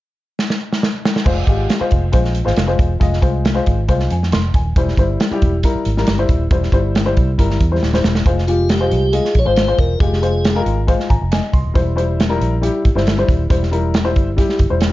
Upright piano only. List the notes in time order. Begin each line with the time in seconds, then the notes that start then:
1.25 G#3 F4 C5
1.47 G#3 F4 G4
1.79 G#3 F4 C5
2.12 G#3 F4 C5
2.45 G#3 F4 C5
2.67 G#3 F4 C5
3.00 G#3 F4 D#5
3.22 G#3 F4 C5
3.54 G#3 F4 C5
3.88 G#3 F4 C5
4.11 G#5
4.32 C6
4.55 G#5
4.76 G3 E4 C5
4.98 G3 E4 C5
5.31 G3 E4 G4
5.64 G3 E4 A#4
5.97 G3 E4 A#4
6.18 G3 E4 C5
6.51 G3 E4 C5
6.73 G3 E4 C5
7.05 G3 E4 C5
7.38 G3 E4 A#4
7.71 G3 E4 C5
7.93 G3 E4 C5
8.25 G#3 F4 C5
8.48 G#3 F4 G4
8.80 G#3 F4 C5
9.13 G#3 F4 D#5
9.45 G#3 F4 C5
9.67 G#3 F4 C5
10.00 G#3 F4 G4
10.22 G#3 F4 C5
10.55 G#3 F4 A#4
10.87 G#3 F4 C5
11.09 G#5 A#5
11.32 D#5 G#5
11.53 C6
11.74 G3 E4 C5
11.96 G3 E4 C5
12.29 G3 E4 A#4
12.61 G3 E4 G4
12.95 G3 E4 C5
13.17 G3 E4 C5
13.50 G3 E4 C5
13.71 G3 E4 A#4
14.04 G3 E4 C5
14.36 G3 E4 G4
14.70 G3 E4 C5